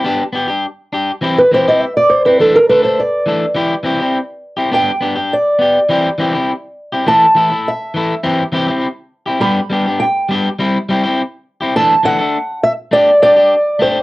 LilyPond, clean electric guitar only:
\new Staff \with { instrumentName = "Clean electric guitar" } { \time 4/4 \key c \lydian \tempo 4 = 102 <b d' g'>16 r16 <b g'>16 <d' g'>16 r8 <d' g'>16 r16 <e c' e' g'>16 r16 <e c' e' g'>16 <c' e' g'>16 r8. <c' e'>16 | <e a d' a'>16 r16 <a d' a'>16 <a d' a'>16 r8 <e a d' a'>16 r16 <e e' g'>16 r16 <e c' e' g'>16 <c' e' g'>16 r8. <c' e' g'>16 | <b d' g'>16 r16 <b d' g'>16 <d' g'>16 r8 <b g'>16 r16 <e c' e' g'>16 r16 <e c' e' g'>16 <c' e' g'>16 r8. <c' e' g'>16 | <e a e' a'>16 r16 <e a e' a'>16 <a e' a'>16 r8 <e a e' a'>16 r16 <e c' e' g'>16 r16 <e c' e' g'>16 <c' e' g'>16 r8. <c' e' g'>16 |
<g b d' g'>16 r16 <g b d' g'>16 <b d' g'>16 r8 <g b d' g'>16 r16 <g c' e'>16 r16 <g c' e' g'>16 <c' e' g'>16 r8. <c' e' g'>16 | <e a d' a'>16 r16 <e a d' a'>16 <a d' a'>16 r4 <a d' g'>16 r16 <d' g'>16 <d' g'>16 r8 <a d' g'>16 r16 | }